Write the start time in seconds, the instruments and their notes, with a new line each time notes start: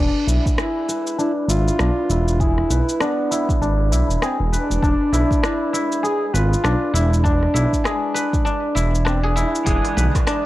Already playing: synth texture G#3 B4, duduk D4, guzheng D4 E4 G#4 B4
0.27 analog synth bass B1, guzheng E4, cabasa
0.46 kick, cabasa
0.58 duduk E4, guzheng G#4, cross-stick, cabasa
0.88 guzheng B4, cabasa
1.07 cabasa
1.18 guzheng D4, duduk E4, cabasa
1.48 analog synth bass G#1, guzheng E4, duduk F4, cabasa
1.68 cabasa
1.79 analog synth bass B1, guzheng D4, cross-stick, cabasa
2.10 analog synth bass E1, guzheng E4, cabasa
2.28 cabasa
2.40 duduk E4, guzheng G#4, kick, cabasa
2.58 cross-stick
2.70 analog synth bass B1, guzheng B4, cabasa
2.89 cabasa
3.00 duduk B3, guzheng D4, cross-stick, cabasa
3.31 guzheng E4, cabasa
3.49 kick, cabasa
3.61 analog synth bass G#1, guzheng D4, cabasa
3.92 analog synth bass B1, guzheng E4, cabasa
4.09 analog synth bass E1, cabasa
4.22 duduk C4, guzheng G#4, cross-stick, cabasa
4.40 analog synth bass E1
4.52 duduk D4, guzheng B4, cabasa
4.70 analog synth bass E1, cabasa
4.82 analog synth bass E1, guzheng D4, kick, cabasa
5.13 analog synth bass B1, guzheng E4, cabasa
5.31 kick, cabasa
5.43 guzheng D4, duduk E4, cross-stick, cabasa
5.73 guzheng E4, cabasa
5.92 cabasa
6.03 guzheng G#4, duduk G#4, cabasa
6.28 duduk G#4
6.34 analog synth bass G#1, duduk F4, guzheng B4, cabasa
6.53 cabasa
6.64 analog synth bass B1, guzheng D4, cross-stick, cabasa
6.93 analog synth bass E1, guzheng E4, duduk E4, cabasa
7.13 cabasa
7.24 guzheng D4, duduk D4, kick, cabasa
7.43 cross-stick
7.54 analog synth bass B1, guzheng E4, cabasa
7.73 kick, cabasa
7.84 duduk D4, guzheng G#4, cross-stick, cabasa
8.14 guzheng B4, cabasa
8.33 kick, cabasa
8.45 guzheng D4, cabasa
8.75 analog synth bass E1, guzheng E4, cabasa
8.95 cabasa
9.05 duduk C4, guzheng D4, cross-stick, cabasa
9.23 guzheng G#4
9.36 guzheng E4, duduk E4, cabasa
9.55 cabasa
9.65 analog synth bass E1, clean electric guitar E3 G#3 B3 D4 G#4, ambient pad G#4 D5 E5 B5, guzheng G#4, synth texture D5, kick, open hi-hat, cabasa
9.85 open hi-hat, darbuka ka
9.97 analog synth bass B1, guzheng B4, mid tom, cabasa
10.15 kick, open hi-hat, darbuka tek, cabasa
10.27 guzheng D4, cross-stick, open hi-hat, cabasa